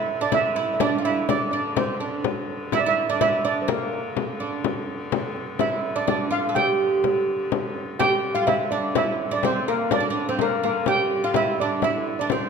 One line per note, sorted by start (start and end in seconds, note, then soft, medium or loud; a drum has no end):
0.00 2.26 G2 medium
0.00 2.25 D3 medium
0.00 0.21 E4 medium
0.00 0.19 E5 medium
0.21 0.31 D4 medium
0.21 0.34 D5 medium
0.32 0.55 E4 medium
0.32 0.73 E5 medium
0.32 frame drum medium
0.56 0.80 E4 medium
0.74 0.80 E5 medium
0.80 0.98 D4 medium
0.80 1.06 D5 medium
0.80 frame drum medium
0.98 1.05 F4 soft
1.04 1.29 E4 medium
1.04 1.30 E5 medium
1.04 frame drum soft
1.29 1.52 D4 medium
1.29 1.50 D5 medium
1.29 frame drum medium
1.51 1.76 D4 medium
1.51 1.62 D5 medium
1.77 2.00 C4 medium
1.77 2.22 C5 medium
1.77 frame drum medium
2.00 2.23 D4 medium
2.24 8.01 G2 medium
2.24 8.01 D3 medium
2.24 frame drum medium
2.72 2.85 E4 medium
2.72 2.81 E5 loud
2.72 frame drum medium
2.79 2.86 D5 medium
2.86 3.09 E4 medium
2.86 3.10 E5 medium
3.09 3.21 D4 medium
3.09 3.21 D5 medium
3.21 3.44 E4 medium
3.21 3.43 E5 medium
3.21 frame drum medium
3.45 3.69 D4 medium
3.45 3.62 D5 medium
3.62 3.69 C5 medium
3.68 4.42 A#3 medium
3.68 4.61 A#4 medium
3.68 frame drum medium
3.93 frame drum soft
4.17 frame drum medium
4.40 4.62 D4 medium
4.64 frame drum medium
5.12 frame drum medium
5.36 frame drum soft
5.59 5.95 E4 medium
5.59 5.97 E5 medium
5.59 frame drum medium
5.96 6.06 D4 medium
5.96 6.06 D5 medium
6.07 6.30 D4 medium
6.07 6.30 D5 medium
6.07 frame drum medium
6.31 6.47 F4 medium
6.31 6.54 F5 medium
6.49 6.55 A4 medium
6.55 7.48 G4 medium
6.55 7.47 G5 medium
6.55 frame drum medium
7.04 frame drum medium
7.28 frame drum soft
7.52 frame drum medium
8.00 12.49 G2 medium
8.00 12.49 D3 medium
8.00 8.35 G4 medium
8.00 8.36 G5 medium
8.00 frame drum medium
8.35 8.47 F4 medium
8.35 8.47 F5 medium
8.47 8.71 E4 medium
8.47 8.58 E5 medium
8.47 frame drum medium
8.71 8.95 D4 medium
8.71 8.96 D5 medium
8.71 frame drum soft
8.95 9.31 E4 medium
8.95 9.29 E5 medium
8.95 frame drum medium
9.31 9.42 D4 medium
9.31 9.43 D5 medium
9.43 9.68 C4 medium
9.43 9.69 C5 medium
9.43 frame drum medium
9.68 9.92 A#3 medium
9.68 9.92 A#4 medium
9.91 9.99 D4 medium
9.91 10.29 D5 medium
9.91 frame drum medium
10.00 10.09 D4 medium
10.10 10.28 D4 medium
10.15 frame drum soft
10.29 10.40 C4 medium
10.29 10.40 C5 medium
10.39 10.62 A#3 medium
10.39 10.52 A#4 medium
10.39 frame drum medium
10.63 10.88 A#3 medium
10.63 10.86 A#4 medium
10.86 11.24 G4 medium
10.86 11.25 G5 medium
10.86 frame drum medium
11.24 11.36 F4 medium
11.24 11.36 F5 medium
11.34 11.60 E4 medium
11.34 11.57 E5 medium
11.34 frame drum medium
11.58 11.84 D4 medium
11.58 11.82 D5 medium
11.58 frame drum soft
11.82 12.20 E4 medium
11.82 12.20 E5 medium
11.82 frame drum medium
12.19 12.31 D4 medium
12.19 12.30 D5 medium
12.30 12.49 C4 medium
12.30 12.49 C5 medium
12.30 frame drum medium